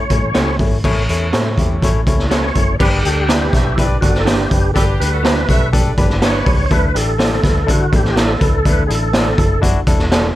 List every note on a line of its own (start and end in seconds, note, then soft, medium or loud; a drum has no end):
0.00 0.57 C#5 loud
0.10 0.21 A2 loud
0.10 0.28 A3 medium
0.10 0.28 C#4 medium
0.10 0.28 E4 medium
0.10 0.28 C#5 medium
0.10 kick medium
0.10 closed hi-hat medium
0.23 0.34 A1 medium
0.34 0.57 C#2 medium
0.34 0.52 A3 loud
0.34 0.50 C#4 medium
0.34 0.52 C#4 medium
0.34 0.50 E4 medium
0.34 0.52 E4 medium
0.34 0.52 G4 loud
0.34 0.50 A4 medium
0.34 0.50 C#5 medium
0.34 snare loud
0.34 closed hi-hat medium
0.59 0.81 G#1 medium
0.59 0.77 A3 medium
0.59 0.77 C#4 medium
0.59 0.77 E4 medium
0.59 0.77 C#5 loud
0.59 kick loud
0.59 open hi-hat medium
0.84 1.06 A1 medium
0.84 1.54 A2 medium
0.84 1.01 A3 loud
0.84 1.01 C#4 loud
0.84 2.52 E4 medium
0.84 1.02 E4 loud
0.84 2.52 A4 medium
0.84 2.52 C#5 medium
0.84 1.02 C#5 loud
0.84 kick loud
0.84 crash medium
1.09 1.30 E2 medium
1.09 1.26 A3 medium
1.09 1.26 C#4 medium
1.09 1.27 E4 medium
1.09 1.27 C#5 medium
1.09 closed hi-hat medium
1.32 1.55 A2 medium
1.32 1.50 A3 medium
1.32 1.48 C#4 medium
1.32 1.51 C#4 medium
1.32 1.48 E4 medium
1.32 1.51 E4 medium
1.32 1.48 A4 medium
1.32 1.48 C#5 medium
1.32 1.51 C#5 medium
1.32 snare loud
1.32 closed hi-hat medium
1.58 1.84 E2 medium
1.58 1.75 A3 medium
1.58 1.76 C#4 medium
1.58 1.76 E4 medium
1.58 1.76 G4 medium
1.58 kick medium
1.58 closed hi-hat medium
1.82 2.04 A1 medium
1.82 2.00 A3 loud
1.82 2.00 C#4 loud
1.82 2.00 E4 loud
1.82 2.00 C#5 loud
1.82 kick medium
1.82 closed hi-hat medium
2.07 2.50 C#2 loud
2.07 2.24 A3 medium
2.07 2.24 C#4 medium
2.07 2.24 E4 medium
2.07 2.24 C#5 medium
2.07 kick medium
2.07 closed hi-hat medium
2.19 snare soft
2.30 2.49 A3 medium
2.30 2.45 C#4 medium
2.30 2.49 C#4 medium
2.30 2.46 E4 medium
2.30 2.49 E4 medium
2.30 2.46 A4 medium
2.30 2.49 B4 medium
2.30 2.76 C#5 loud
2.30 2.46 C#5 medium
2.30 snare loud
2.30 closed hi-hat medium
2.55 2.77 F#1 loud
2.55 2.73 A3 medium
2.55 2.73 C#4 medium
2.55 2.73 E4 medium
2.55 2.73 C#5 loud
2.55 kick medium
2.55 closed hi-hat medium
2.79 3.02 G1 loud
2.79 3.50 G2 medium
2.79 3.14 B3 loud
2.79 3.14 D4 loud
2.79 2.98 D4 loud
2.79 3.14 G4 loud
2.79 2.98 G4 loud
2.79 2.91 B4 loud
2.79 2.98 B4 loud
2.79 kick loud
2.79 crash loud
3.03 3.48 D2 medium
3.03 3.22 D4 medium
3.03 3.79 G4 loud
3.03 3.22 G4 medium
3.03 3.22 A4 medium
3.03 closed hi-hat medium
3.17 3.27 D4 medium
3.17 3.27 F#4 medium
3.17 3.26 A4 medium
3.28 3.44 D4 medium
3.28 3.48 D4 medium
3.28 3.47 D4 medium
3.28 3.44 G4 medium
3.28 3.48 G4 medium
3.28 3.47 G4 medium
3.28 3.48 B4 loud
3.28 3.44 B4 medium
3.28 3.47 B4 medium
3.28 3.44 D5 medium
3.28 snare loud
3.28 closed hi-hat loud
3.53 3.96 B1 medium
3.53 3.71 D4 medium
3.53 3.71 G4 medium
3.53 3.73 A4 medium
3.53 3.71 B4 medium
3.53 3.73 C#5 loud
3.53 3.73 E5 loud
3.53 kick medium
3.53 snare soft
3.53 closed hi-hat medium
3.76 3.95 D4 loud
3.76 3.87 E4 medium
3.76 3.98 G4 medium
3.76 3.95 G4 loud
3.76 3.98 B4 medium
3.76 3.96 B4 loud
3.76 3.98 D5 medium
3.76 kick medium
3.76 closed hi-hat medium
4.01 4.45 G1 loud
4.01 4.19 D4 medium
4.01 4.18 F#4 medium
4.01 4.20 G4 medium
4.01 4.49 G4 medium
4.01 4.20 A4 medium
4.01 4.48 B4 medium
4.01 4.49 D5 loud
4.01 kick medium
4.01 closed hi-hat medium
4.15 snare soft
4.20 4.27 A4 medium
4.25 4.41 D4 medium
4.25 4.44 D4 medium
4.25 4.71 G4 medium
4.25 4.41 G4 medium
4.25 4.44 G4 medium
4.25 4.41 B4 medium
4.25 4.45 B4 medium
4.25 4.41 D5 medium
4.25 snare loud
4.25 closed hi-hat medium
4.51 4.73 F#1 loud
4.51 4.69 D4 medium
4.51 4.69 G4 medium
4.51 4.69 B4 medium
4.51 kick loud
4.51 closed hi-hat medium
4.74 4.97 G1 loud
4.74 5.45 G2 medium
4.74 5.10 B3 loud
4.74 5.09 D4 loud
4.74 4.93 D4 loud
4.74 5.10 G4 loud
4.74 4.93 G4 medium
4.74 4.85 A4 loud
4.74 4.93 B4 loud
4.74 kick loud
4.74 closed hi-hat medium
5.00 5.43 D2 loud
5.00 5.17 D4 medium
5.00 5.17 G4 medium
5.00 5.69 B4 medium
5.00 5.17 B4 medium
5.00 closed hi-hat medium
5.12 5.22 D4 medium
5.12 5.22 F#4 medium
5.12 5.22 A4 medium
5.23 5.39 D4 medium
5.23 5.44 D4 medium
5.23 5.41 D4 medium
5.23 5.43 G4 medium
5.23 5.39 G4 medium
5.23 5.41 G4 medium
5.23 5.44 B4 loud
5.23 5.39 B4 medium
5.23 5.42 B4 medium
5.23 5.40 D5 medium
5.23 snare loud
5.23 closed hi-hat loud
5.49 5.92 B1 medium
5.49 5.66 D4 medium
5.49 5.66 G4 medium
5.49 5.68 A4 loud
5.49 5.66 A4 medium
5.49 5.69 C#5 loud
5.49 5.68 E5 loud
5.49 kick medium
5.49 closed hi-hat medium
5.73 5.90 D4 loud
5.73 5.90 G4 loud
5.73 5.93 G4 medium
5.73 5.90 A4 loud
5.73 5.93 B4 medium
5.73 5.93 D5 medium
5.73 kick loud
5.73 closed hi-hat loud
5.97 6.41 G1 loud
5.97 6.16 D4 medium
5.97 6.15 D4 medium
5.97 6.17 G4 medium
5.97 6.15 G4 medium
5.97 6.17 B4 loud
5.97 6.15 B4 loud
5.97 kick loud
5.97 closed hi-hat medium
6.10 snare soft
6.22 6.37 D4 medium
6.22 6.39 D4 medium
6.22 6.56 D4 loud
6.22 6.39 G4 medium
6.22 6.37 G4 medium
6.22 6.57 G4 loud
6.22 6.56 B4 loud
6.22 6.37 B4 loud
6.22 6.39 B4 medium
6.22 6.65 C#5 loud
6.22 6.37 D5 loud
6.22 snare loud
6.22 closed hi-hat medium
6.45 6.68 C#2 loud
6.45 6.63 D4 medium
6.45 6.63 G4 medium
6.45 6.63 B4 medium
6.45 kick loud
6.45 open hi-hat medium
6.66 6.71 C#5 medium
6.71 6.92 D2 loud
6.71 7.40 D3 medium
6.71 6.88 D4 loud
6.71 6.88 E4 loud
6.71 6.88 A4 loud
6.71 6.97 B4 loud
6.71 kick loud
6.71 closed hi-hat medium
6.95 7.38 A1 loud
6.95 7.12 D4 medium
6.95 7.12 E4 medium
6.95 7.12 G4 medium
6.95 7.71 A4 loud
6.95 closed hi-hat medium
7.18 7.34 A3 medium
7.18 7.36 D4 medium
7.18 7.36 E4 medium
7.18 7.34 E4 medium
7.18 7.34 A4 medium
7.18 7.37 A4 medium
7.18 7.35 D5 medium
7.18 snare loud
7.18 closed hi-hat loud
7.43 7.65 D2 medium
7.43 7.61 D4 medium
7.43 7.61 E4 medium
7.43 7.61 B4 medium
7.43 kick medium
7.43 snare soft
7.43 closed hi-hat medium
7.66 7.90 D3 medium
7.66 7.84 D4 loud
7.66 7.84 E4 medium
7.66 7.84 A4 loud
7.66 kick medium
7.66 closed hi-hat medium
7.71 7.95 F#4 medium
7.92 8.35 A1 loud
7.92 8.09 D4 medium
7.92 8.09 E4 medium
7.92 8.19 G4 medium
7.92 8.09 A4 medium
7.92 kick loud
7.92 closed hi-hat medium
8.05 snare soft
8.16 8.31 A3 medium
8.16 8.33 D4 medium
8.16 8.34 E4 medium
8.16 8.32 E4 medium
8.16 8.32 A4 medium
8.16 8.34 A4 medium
8.16 8.32 D5 medium
8.16 snare loud
8.16 closed hi-hat loud
8.20 8.69 A4 medium
8.40 8.62 C#2 medium
8.40 8.58 D4 medium
8.40 8.58 E4 medium
8.40 8.58 B4 medium
8.40 kick loud
8.40 closed hi-hat medium
8.65 8.87 D2 loud
8.65 9.34 D3 medium
8.65 8.82 D4 loud
8.65 8.83 E4 loud
8.65 8.83 A4 loud
8.65 8.83 B4 loud
8.65 kick loud
8.65 closed hi-hat medium
8.87 9.33 A1 loud
8.87 9.06 D4 medium
8.87 9.06 E4 medium
8.87 8.92 G#4 medium
8.87 9.07 A4 medium
8.87 closed hi-hat medium
8.95 9.61 A4 medium
9.13 9.29 A3 medium
9.13 9.31 D4 medium
9.13 9.31 E4 medium
9.13 9.29 E4 medium
9.13 9.31 A4 medium
9.13 9.29 A4 medium
9.13 9.29 D5 medium
9.13 snare loud
9.13 closed hi-hat loud
9.38 9.81 F#1 medium
9.38 9.55 D4 medium
9.38 9.55 E4 medium
9.38 9.55 A4 medium
9.38 kick loud
9.38 closed hi-hat medium
9.62 9.79 D4 loud
9.62 9.79 E4 loud
9.62 9.79 F#4 loud
9.62 kick medium
9.62 closed hi-hat medium
9.87 10.30 E1 medium
9.87 10.04 D4 medium
9.87 10.04 E4 medium
9.87 10.05 A4 loud
9.87 kick loud
9.87 closed hi-hat medium
9.99 snare soft
10.12 10.26 A3 medium
10.12 10.28 D4 medium
10.12 10.28 E4 medium
10.12 10.26 E4 medium
10.12 10.29 A4 loud
10.12 10.27 A4 medium
10.12 10.27 D5 medium
10.12 snare loud
10.12 closed hi-hat medium